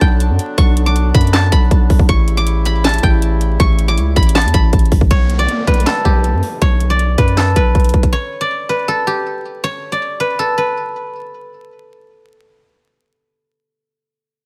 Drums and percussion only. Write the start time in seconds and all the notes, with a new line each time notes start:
0.01 kick
0.20 closed hi-hat
0.39 closed hi-hat
0.58 kick, closed hi-hat
0.77 closed hi-hat
0.96 closed hi-hat
1.15 kick, closed hi-hat
1.21 closed hi-hat
1.27 closed hi-hat
1.33 snare, clap, closed hi-hat
1.52 kick, closed hi-hat
1.71 kick, closed hi-hat
1.90 kick, open hi-hat
1.99 kick
2.09 kick, closed hi-hat
2.28 closed hi-hat
2.47 closed hi-hat
2.65 closed hi-hat
2.84 snare, clap, closed hi-hat
2.89 closed hi-hat
2.94 closed hi-hat
2.98 closed hi-hat
3.03 kick
3.22 closed hi-hat
3.41 closed hi-hat
3.60 kick, closed hi-hat
3.79 closed hi-hat
3.97 closed hi-hat
4.16 kick, closed hi-hat
4.23 closed hi-hat
4.29 closed hi-hat
4.35 snare, clap, closed hi-hat
4.42 closed hi-hat
4.48 closed hi-hat
4.54 kick, closed hi-hat
4.73 kick, closed hi-hat
4.79 closed hi-hat
4.86 closed hi-hat
4.92 kick, open hi-hat
5.01 kick
5.11 kick, closed hi-hat
5.30 closed hi-hat
5.49 closed hi-hat
5.67 kick, closed hi-hat
5.74 closed hi-hat
5.80 closed hi-hat
5.86 snare, clap, closed hi-hat
6.05 kick
6.24 closed hi-hat
6.43 open hi-hat
6.62 kick, closed hi-hat
6.80 closed hi-hat
6.99 closed hi-hat
7.18 kick, closed hi-hat
7.28 closed hi-hat
7.37 snare, clap, closed hi-hat
7.56 kick, closed hi-hat
7.75 kick, closed hi-hat
7.80 closed hi-hat
7.84 closed hi-hat
7.89 closed hi-hat
7.94 kick
8.03 kick, closed hi-hat